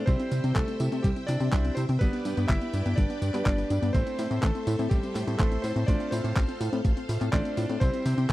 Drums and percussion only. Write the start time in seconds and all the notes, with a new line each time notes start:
0.07 kick, closed hi-hat, tambourine
0.19 closed hi-hat, tambourine
0.32 closed hi-hat, tambourine
0.44 closed hi-hat, tambourine
0.56 kick, clap, closed hi-hat, tambourine
0.68 closed hi-hat, tambourine
0.80 closed hi-hat, tambourine
0.92 closed hi-hat, tambourine
1.04 kick, closed hi-hat, tambourine
1.16 closed hi-hat, tambourine
1.28 clap, closed hi-hat, tambourine
1.40 closed hi-hat, tambourine
1.53 kick, clap, closed hi-hat, tambourine
1.65 closed hi-hat, tambourine
1.77 closed hi-hat, tambourine
1.89 closed hi-hat, tambourine
2.01 kick, closed hi-hat, tambourine
2.13 closed hi-hat, tambourine
2.25 closed hi-hat, tambourine
2.37 closed hi-hat, tambourine
2.49 kick, clap, closed hi-hat, tambourine
2.61 closed hi-hat, tambourine
2.74 closed hi-hat, tambourine
2.86 closed hi-hat, tambourine
2.98 kick, closed hi-hat, tambourine
3.10 closed hi-hat, tambourine
3.22 closed hi-hat, tambourine
3.34 clap, closed hi-hat, tambourine
3.46 kick, clap, closed hi-hat, tambourine
3.58 closed hi-hat, tambourine
3.70 closed hi-hat, tambourine
3.83 closed hi-hat, tambourine
3.94 kick, closed hi-hat, tambourine
4.07 closed hi-hat, tambourine
4.19 open hi-hat, tambourine
4.31 closed hi-hat, tambourine
4.43 kick, clap, closed hi-hat, tambourine
4.55 closed hi-hat, tambourine
4.67 open hi-hat, tambourine
4.79 closed hi-hat, tambourine
4.91 kick, closed hi-hat, tambourine
5.03 closed hi-hat, tambourine
5.15 clap, open hi-hat, tambourine
5.28 closed hi-hat, tambourine
5.40 kick, clap, closed hi-hat, tambourine
5.52 closed hi-hat, tambourine
5.64 open hi-hat, tambourine
5.76 closed hi-hat, tambourine
5.88 kick, closed hi-hat, tambourine
6.00 closed hi-hat, tambourine
6.12 open hi-hat, tambourine
6.24 closed hi-hat, tambourine
6.36 kick, clap, closed hi-hat, tambourine
6.49 closed hi-hat, tambourine
6.61 open hi-hat, tambourine
6.73 closed hi-hat, tambourine
6.85 kick, closed hi-hat, tambourine
6.97 closed hi-hat, tambourine
7.09 open hi-hat, tambourine
7.21 clap, closed hi-hat, tambourine
7.33 kick, clap, closed hi-hat, tambourine
7.45 closed hi-hat, tambourine
7.57 open hi-hat, tambourine
7.69 closed hi-hat, tambourine
7.81 kick, closed hi-hat, tambourine
7.94 closed hi-hat, tambourine
8.06 open hi-hat, tambourine
8.18 closed hi-hat, tambourine